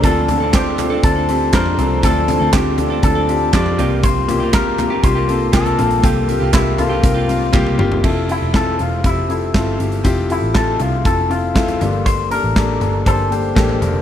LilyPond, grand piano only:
<<
  \new Staff \with { instrumentName = "Grand piano" } { \time 4/4 \key f \major \tempo 4 = 120 <c' d' f' a'>8 <c' d' f' a'>8 <c' d' f' c''>8 <c' d' f' a'>8 <c' d' f' a'>8 <c' d' f' g'>8 <c' d' f' c''>8 <c' d' f' a'>8 | <c' d' f' a'>8 <c' d' f' a'>8 <c' d' f' g'>8 <c' d' f' a'>8 <c' d' f' a'>8 <c' d' f' g'>8 <c' d' f' g'>8 <bes c' f' g'>8~ | <bes c' f' g'>8 <bes c' f' g'>8 <bes c' f' g'>8 <bes c' f' g'>8 <bes c' f' g'>8 <bes c' f' a'>8 <bes c' f' bes'>8 <bes c' f' a'>8 | <bes c' f' a'>8 <bes c' f' g'>8 <bes c' f' g'>8 <bes c' f' a'>8 <bes c' f' bes'>8 <bes c' f' bes'>8 <bes c' f' g'>8 <bes c' f' g'>8 |
<c' e' f' a'>8 <c' e' f' a'>8 <c' e' f' a'>8 <c' e' f' a'>8 <c' e' f' g'>8 <c' e' f' a'>8 <c' e' f' a'>8 <c' e' f' g'>8 | <c' e' f' g'>8 <c' e' f' a'>8 <c' e' f' a'>8 <c' e' f' a'>8 <c' e' f' a'>8 <c' e' f' a'>8 <c' e' f' a'>8 <bes d' g' a'>8~ | <bes d' g' a'>8 <bes d' g' a'>8 <bes d' g' a'>8 <bes d' g' a'>8 <bes d' g' c''>8 <bes d' g' a'>8 <bes d' g' a'>8 <bes d' g' bes'>8 | }
  \new Staff \with { instrumentName = "Grand piano" } { \clef bass \time 4/4 \key f \major a,4. r2 r8 | a,4. r2 g,8~ | g,4 r2 r8 g,8~ | g,4 r2. |
c4. r2 r8 | c4. r2 <g, d>8~ | <g, d>4 r2 r8 <g, d>8 | }
>>